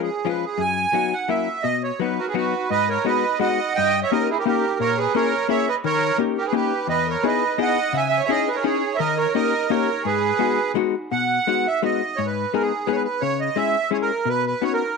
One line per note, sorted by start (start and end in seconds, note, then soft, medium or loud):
0.02 0.28 G#4 medium
0.25 0.43 F3 medium
0.25 0.44 G#3 soft
0.25 0.44 C#4 medium
0.25 0.44 F4 medium
0.25 0.45 B4 medium
0.45 0.61 G#4 medium
0.58 0.85 F#2 medium
0.58 1.15 G#5 loud
0.93 1.12 F#3 medium
0.93 1.12 B3 soft
0.93 1.13 D#4 medium
0.93 1.13 F#4 medium
1.13 1.30 F#5 medium
1.28 1.47 F#3 soft
1.28 1.47 A#3 soft
1.28 1.48 C#4 soft
1.28 1.48 E4 medium
1.28 1.65 E5 medium
1.63 1.90 B2 medium
1.63 1.82 D#5 medium
1.83 2.00 C#5 medium
2.00 2.18 F#3 medium
2.00 2.18 B3 soft
2.00 2.18 D#4 soft
2.00 2.19 F#4 medium
2.00 2.26 B4 medium
2.19 2.26 F#4 soft
2.19 2.27 F#4 medium
2.19 2.27 A#4 medium
2.28 2.35 G#4 soft
2.28 2.36 G#4 soft
2.28 2.35 B4 medium
2.34 2.53 F#3 medium
2.34 2.53 B3 soft
2.34 2.53 D#4 soft
2.34 2.53 F#4 medium
2.34 2.68 F#4 soft
2.34 2.69 F#4 medium
2.34 2.70 B4 medium
2.70 2.97 G#2 soft
2.70 2.88 B4 medium
2.70 2.89 D#5 loud
2.89 3.04 A#4 medium
2.89 3.06 A#4 medium
2.89 3.06 C#5 medium
3.05 3.24 G#3 medium
3.05 3.24 B3 soft
3.05 3.24 D#4 soft
3.05 3.24 F#4 soft
3.05 3.39 B4 medium
3.05 3.39 D#5 medium
3.39 3.59 G#3 medium
3.39 3.59 B3 soft
3.39 3.59 D#4 medium
3.39 3.59 F#4 medium
3.39 3.73 D#5 medium
3.39 3.74 D#5 medium
3.39 3.76 F#5 medium
3.75 4.03 G2 medium
3.75 4.00 D#5 medium
3.75 4.02 D#5 medium
3.75 4.00 G5 loud
4.03 4.10 C#5 medium
4.03 4.12 C#5 medium
4.03 4.11 E5 medium
4.11 4.29 A#3 medium
4.11 4.30 C#4 medium
4.11 4.30 D#4 soft
4.11 4.30 G4 medium
4.11 4.28 A#4 medium
4.11 4.30 D#5 medium
4.16 4.30 A#4 medium
4.29 4.37 E4 medium
4.29 4.38 E4 medium
4.29 4.38 G#4 medium
4.38 4.44 G4 medium
4.38 4.46 G4 medium
4.38 4.45 A#4 medium
4.46 4.64 A#3 medium
4.46 4.64 C#4 soft
4.46 4.64 D#4 medium
4.46 4.78 G4 medium
4.46 4.64 G4 medium
4.46 4.78 A#4 medium
4.80 5.06 A#2 medium
4.80 4.97 A#4 medium
4.80 4.98 A#4 medium
4.80 4.99 C#5 medium
4.97 5.13 G#4 medium
4.97 5.15 G#4 medium
4.97 5.15 B4 medium
5.15 5.33 A#3 medium
5.15 5.33 C#4 medium
5.15 5.33 E4 soft
5.15 5.34 G#4 medium
5.15 5.47 A#4 medium
5.15 5.48 A#4 medium
5.15 5.47 C#5 medium
5.49 5.67 A#3 medium
5.49 5.67 C#4 medium
5.49 5.67 E4 medium
5.49 5.68 G#4 medium
5.49 5.66 C#5 medium
5.49 5.67 C#5 medium
5.49 5.68 E5 medium
5.68 5.75 B4 medium
5.68 5.76 B4 medium
5.68 5.76 D#5 medium
5.84 6.10 D#3 medium
5.84 6.17 A#4 medium
5.84 6.17 C#5 loud
6.18 6.37 A#3 medium
6.18 6.37 C#4 soft
6.18 6.37 D#4 soft
6.18 6.37 G4 medium
6.38 6.45 G4 medium
6.38 6.46 G4 medium
6.38 6.46 A#4 medium
6.46 6.53 G#4 medium
6.46 6.54 G#4 medium
6.46 6.54 B4 medium
6.53 6.72 A#3 medium
6.53 6.72 C#4 soft
6.53 6.72 D#4 soft
6.53 6.73 G4 medium
6.53 6.87 G4 medium
6.53 6.88 G4 medium
6.53 6.87 B4 medium
6.87 7.15 E2 medium
6.87 7.06 B4 medium
6.87 7.07 B4 medium
6.87 7.08 D#5 medium
7.07 7.22 A#4 medium
7.07 7.24 A#4 medium
7.07 7.26 C#5 medium
7.23 7.43 B3 soft
7.23 7.43 D#4 soft
7.23 7.43 E4 soft
7.23 7.43 G#4 medium
7.23 7.56 B4 medium
7.23 7.58 B4 medium
7.23 7.59 D#5 medium
7.58 7.77 B3 medium
7.58 7.78 D#4 soft
7.58 7.78 E4 soft
7.58 7.78 G#4 medium
7.58 7.92 D#5 medium
7.58 7.93 D#5 medium
7.58 7.97 F#5 medium
7.93 8.20 C#3 medium
7.93 7.97 E5 medium
7.93 8.02 E5 medium
7.97 8.06 E5 medium
7.97 8.08 G#5 medium
8.07 8.18 E5 medium
8.07 8.21 E5 medium
8.11 8.23 G#5 medium
8.19 8.27 C#5 medium
8.24 8.30 C#5 medium
8.24 8.31 E5 medium
8.28 8.48 C#4 medium
8.28 8.48 D#4 medium
8.28 8.48 E4 medium
8.28 8.44 G#4 medium
8.28 8.48 G#4 medium
8.28 8.47 G#4 medium
8.28 8.49 D#5 medium
8.45 8.52 G#4 medium
8.45 8.56 G#4 medium
8.45 8.57 B4 medium
8.53 8.60 A#4 medium
8.53 8.64 A#4 medium
8.53 8.64 C#5 medium
8.61 8.83 C#4 medium
8.61 8.83 D#4 soft
8.61 8.83 E4 medium
8.61 8.91 G#4 medium
8.65 8.93 G#4 medium
8.65 8.83 G#4 medium
8.65 8.97 C#5 medium
8.94 8.98 C#5 medium
8.94 8.99 E5 medium
8.98 9.26 D#3 medium
8.98 9.16 A#4 medium
8.98 9.18 D#5 medium
9.17 9.33 A#4 medium
9.17 9.34 A#4 medium
9.17 9.34 C#5 medium
9.35 9.53 A#3 medium
9.35 9.53 C#4 medium
9.35 9.53 D#4 soft
9.35 9.53 G4 medium
9.35 9.67 A#4 medium
9.35 9.71 D#5 medium
9.68 9.88 A#3 medium
9.68 9.88 C#4 medium
9.68 9.88 D#4 medium
9.68 9.89 G4 medium
9.68 10.01 A#4 medium
9.68 10.02 A#4 medium
9.68 10.06 C#5 medium
10.04 10.31 G#2 medium
10.04 10.71 G#4 medium
10.04 10.72 G#4 medium
10.04 10.72 B4 medium
10.39 10.58 G#3 medium
10.39 10.58 B3 medium
10.39 10.58 D#4 soft
10.39 10.58 F#4 medium
10.75 10.94 G#3 medium
10.75 10.94 B3 soft
10.75 10.94 D#4 medium
10.75 10.94 F#4 medium
11.12 11.38 B2 medium
11.12 11.67 F#5 loud
11.47 11.66 G#3 medium
11.47 11.65 B3 soft
11.47 11.66 D#4 soft
11.47 11.66 F#4 medium
11.67 11.82 E5 medium
11.82 12.01 G#3 medium
11.82 12.01 B3 soft
11.82 12.01 D#4 soft
11.82 12.01 F#4 medium
11.82 12.19 D#5 medium
12.16 12.44 G#2 medium
12.16 12.26 C#5 medium
12.26 12.53 B4 medium
12.54 12.71 G#3 medium
12.54 12.71 B3 soft
12.54 12.72 D#4 soft
12.54 12.72 G#4 medium
12.54 12.62 A#4 medium
12.61 12.88 G#4 medium
12.86 13.06 G#3 medium
12.86 13.06 B3 medium
12.86 13.06 D#4 soft
12.86 13.06 G#4 medium
12.86 12.91 B4 medium
12.91 13.03 B4 medium
12.91 12.96 C#5 medium
13.04 13.22 B4 medium
13.21 13.48 C#3 medium
13.21 13.40 C#5 loud
13.40 13.57 D#5 medium
13.56 13.75 G#3 medium
13.56 13.75 C#4 soft
13.56 13.75 E4 medium
13.56 13.76 G#4 medium
13.56 13.90 E5 loud
13.91 14.10 G#3 medium
13.91 14.11 C#4 medium
13.91 14.10 E4 soft
13.91 14.11 G#4 medium
13.91 13.97 C#5 medium
14.02 14.29 A#4 medium
14.25 14.53 B2 medium
14.25 14.45 B4 loud
14.46 14.64 B4 medium
14.62 14.81 B3 soft
14.62 14.81 C#4 soft
14.62 14.82 D#4 soft
14.62 14.82 F#4 medium
14.62 14.73 C#5 medium
14.73 14.97 A#4 medium